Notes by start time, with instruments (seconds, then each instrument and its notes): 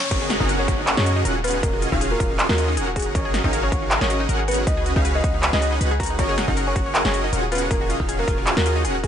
Already playing: riser
0.11 808-style bass F#1, supersaw synth C#4 F#4 G#4 A#4 D#5, synth arpeggio sound A#4, soft synth lead C#5, kick, closed hi-hat, crash, downlifter
0.21 synth arpeggio sound G#4
0.30 synth arpeggio sound F#4, snare, closed hi-hat
0.40 808-style bass F#1, supersaw synth C#4 F#4 G#4 A#4 F#5, synth arpeggio sound D#4, kick
0.49 synth arpeggio sound A#4, closed hi-hat
0.59 synth arpeggio sound G#4, soft synth lead C#5
0.68 808-style bass F#1, supersaw synth C#4 F#4 G#4 A#4 F#5, synth arpeggio sound F#4, kick, closed hi-hat
0.78 synth arpeggio sound D#4
0.87 synth arpeggio sound A#4, clap, closed hi-hat
0.97 808-style bass F#2, supersaw synth C#4 F#4 G#4 A#4 D#5, synth arpeggio sound G#4, soft synth lead C#5, snare
1.06 synth arpeggio sound F#4, closed hi-hat
1.16 synth arpeggio sound D#4
1.25 808-style bass D#1, supersaw synth C#4 F4 F#4 G#4 F#5, synth arpeggio sound A#4, closed hi-hat
1.35 synth arpeggio sound G#4
1.44 synth arpeggio sound F4, soft synth lead B4, closed hi-hat
1.48 closed hi-hat
1.51 synth arpeggio sound D#4, closed hi-hat
1.63 808-style bass D#1, supersaw synth C#4 F4 F#4 G#4 D#5, synth arpeggio sound G#4, soft synth lead A#4, kick, closed hi-hat
1.73 synth arpeggio sound F#4
1.82 synth arpeggio sound F4, closed hi-hat
1.92 808-style bass D#1, supersaw synth C#4 F4 F#4 G#4 F5, synth arpeggio sound D#4, kick
2.01 synth arpeggio sound G#4, closed hi-hat
2.11 synth arpeggio sound F#4, soft synth lead A#4
2.20 808-style bass D#1, supersaw synth C#4 F4 F#4 G#4 F5, synth arpeggio sound F4, kick, closed hi-hat
2.30 synth arpeggio sound D#4
2.39 synth arpeggio sound G#4, clap, closed hi-hat
2.49 808-style bass D#2, supersaw synth C#4 F4 F#4 G#4 D#5, synth arpeggio sound F#4, soft synth lead A#4, snare
2.58 synth arpeggio sound F4, closed hi-hat
2.68 synth arpeggio sound D#4
2.77 808-style bass D#1, supersaw synth C#4 F#4 G#4 A#4 F#5, synth arpeggio sound G#4, closed hi-hat
2.87 synth arpeggio sound F#4
2.96 synth arpeggio sound F#4, soft synth lead G#4, kick, closed hi-hat
2.99 closed hi-hat
3.02 synth arpeggio sound D#4, closed hi-hat
3.15 808-style bass G#1, supersaw synth C#4 F#4 G#4 A#4 D#5, synth arpeggio sound A#4, soft synth lead C#5, kick, closed hi-hat
3.25 synth arpeggio sound G#4
3.34 synth arpeggio sound F#4, snare, closed hi-hat
3.44 808-style bass G#1, supersaw synth C#4 F#4 G#4 A#4 F5, synth arpeggio sound D#4, kick
3.53 synth arpeggio sound A#4, closed hi-hat
3.63 synth arpeggio sound G#4, soft synth lead C#5
3.72 808-style bass G#1, supersaw synth C#4 F#4 G#4 A#4 F5, synth arpeggio sound F#4, kick, closed hi-hat
3.82 synth arpeggio sound D#4
3.91 synth arpeggio sound A#4, clap, closed hi-hat
4.01 808-style bass G#1, supersaw synth C#4 F#4 G#4 A#4 D#5, synth arpeggio sound G#4, soft synth lead C#5, snare
4.10 synth arpeggio sound F#4, closed hi-hat
4.20 synth arpeggio sound D#4
4.29 808-style bass G#1, supersaw synth C#4 F#4 G#4 A#4 F#5, synth arpeggio sound A#4, closed hi-hat
4.39 synth arpeggio sound G#4
4.48 synth arpeggio sound F#4, soft synth lead B4, closed hi-hat
4.51 closed hi-hat
4.54 closed hi-hat
4.58 synth arpeggio sound D#4
4.67 808-style bass C#2, supersaw synth C#4 F#4 G#4 B4 D#5, synth arpeggio sound B4, soft synth lead D#5, kick, closed hi-hat
4.77 synth arpeggio sound G#4
4.86 synth arpeggio sound F#4, closed hi-hat
4.96 808-style bass C#2, supersaw synth C#4 F#4 G#4 B4 F5, synth arpeggio sound D#4, kick
5.05 synth arpeggio sound B4, closed hi-hat
5.15 synth arpeggio sound G#4, soft synth lead D#5
5.24 808-style bass C#2, supersaw synth C#4 F#4 G#4 B4 F5, synth arpeggio sound F#4, kick, closed hi-hat
5.34 synth arpeggio sound D#4
5.43 synth arpeggio sound B4, clap, closed hi-hat
5.53 808-style bass C#2, supersaw synth C#4 F#4 G#4 B4 D#5, synth arpeggio sound G#4, soft synth lead D#5, snare
5.62 synth arpeggio sound F#4, closed hi-hat
5.72 synth arpeggio sound D#4
5.81 808-style bass C#2, supersaw synth C#4 F#4 G#4 B4 F#5, synth arpeggio sound B4, closed hi-hat
5.91 synth arpeggio sound G#4
6.00 synth arpeggio sound F#4, soft synth lead A#5, kick, closed hi-hat
6.03 closed hi-hat
6.06 closed hi-hat
6.10 synth arpeggio sound D#4
6.19 808-style bass F#1, supersaw synth C#4 F#4 G#4 A#4 D#5, synth arpeggio sound A#4, soft synth lead C#5, kick, closed hi-hat
6.29 synth arpeggio sound G#4
6.38 synth arpeggio sound F#4, snare, closed hi-hat
6.48 808-style bass F#1, supersaw synth C#4 F#4 G#4 A#4 F#5, synth arpeggio sound D#4, kick
6.57 synth arpeggio sound A#4, closed hi-hat
6.67 synth arpeggio sound G#4, soft synth lead C#5
6.76 808-style bass F#1, supersaw synth C#4 F#4 G#4 A#4 F#5, synth arpeggio sound F#4, kick, closed hi-hat
6.86 synth arpeggio sound C#5
6.95 synth arpeggio sound A#4, clap, closed hi-hat
7.05 808-style bass F#1, supersaw synth C#4 F#4 G#4 A#4 D#5, synth arpeggio sound G#4, soft synth lead C#5, snare
7.14 synth arpeggio sound F#4, closed hi-hat
7.24 synth arpeggio sound D#4
7.33 808-style bass D#1, supersaw synth C#4 F4 F#4 G#4 F#5, synth arpeggio sound A#4, closed hi-hat
7.43 synth arpeggio sound G#4
7.52 synth arpeggio sound F4, soft synth lead B4, closed hi-hat
7.55 closed hi-hat
7.58 synth arpeggio sound A#4, closed hi-hat
7.71 808-style bass D#1, supersaw synth C#4 F4 F#4 G#4 D#5, synth arpeggio sound G#4, soft synth lead A#4, kick, closed hi-hat
7.81 synth arpeggio sound F#4
7.90 synth arpeggio sound F4, closed hi-hat
8.00 808-style bass D#1, supersaw synth C#4 F4 F#4 G#4 F5, synth arpeggio sound D#4, kick
8.09 synth arpeggio sound G#4, closed hi-hat
8.19 synth arpeggio sound F#4, soft synth lead A#4
8.28 808-style bass D#1, supersaw synth C#4 F4 F#4 G#4 F5, synth arpeggio sound F4, kick, closed hi-hat
8.38 synth arpeggio sound A#4
8.47 synth arpeggio sound G#4, clap, closed hi-hat
8.57 808-style bass D#2, supersaw synth C#4 F4 F#4 G#4 D#5, synth arpeggio sound F#4, soft synth lead A#4, snare
8.66 synth arpeggio sound F4, closed hi-hat
8.76 synth arpeggio sound D#4
8.85 808-style bass D#1, supersaw synth C#4 F#4 G#4 A#4 F#5, synth arpeggio sound G#4, closed hi-hat
8.95 synth arpeggio sound F#4
9.04 synth arpeggio sound F#4, soft synth lead G#4, kick, closed hi-hat